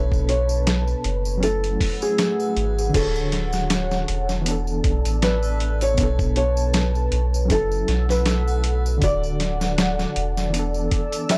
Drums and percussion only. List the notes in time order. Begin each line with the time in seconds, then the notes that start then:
0.12 kick, tambourine
0.29 closed hi-hat
0.49 tambourine
0.67 snare, closed hi-hat, tambourine
0.87 tambourine
1.04 closed hi-hat
1.25 tambourine
1.43 closed hi-hat, tambourine
1.64 closed hi-hat, tambourine
1.81 kick, open hi-hat
2.02 tambourine
2.18 snare, closed hi-hat, tambourine
2.40 tambourine, triangle
2.57 closed hi-hat
2.78 tambourine
2.94 kick, closed hi-hat, crash, tambourine
3.16 tambourine
3.32 snare, closed hi-hat
3.53 snare, tambourine
3.70 snare, closed hi-hat, tambourine
3.91 snare, tambourine
4.08 closed hi-hat
4.29 snare, tambourine
4.46 closed hi-hat, tambourine
4.67 tambourine
4.84 kick, closed hi-hat
5.05 closed hi-hat, tambourine
5.22 snare, closed hi-hat, tambourine
5.43 tambourine, triangle
5.60 closed hi-hat
5.81 closed hi-hat, tambourine, triangle
5.97 kick, closed hi-hat, tambourine
6.19 kick, tambourine
6.36 closed hi-hat
6.57 tambourine
6.73 snare, closed hi-hat, tambourine
6.95 tambourine
7.12 closed hi-hat
7.34 tambourine
7.50 kick, closed hi-hat, tambourine
7.72 tambourine
7.88 snare, closed hi-hat
8.09 snare, tambourine
8.26 snare, closed hi-hat, tambourine
8.48 tambourine, triangle
8.64 closed hi-hat
8.86 tambourine
9.02 kick, closed hi-hat, tambourine
9.23 tambourine
9.40 snare, closed hi-hat
9.61 snare, tambourine
9.78 snare, closed hi-hat, tambourine
9.99 snare, tambourine
10.16 closed hi-hat
10.37 snare, tambourine
10.54 closed hi-hat, tambourine
10.74 tambourine
10.91 kick, closed hi-hat
11.12 closed hi-hat, tambourine
11.29 snare, closed hi-hat, tambourine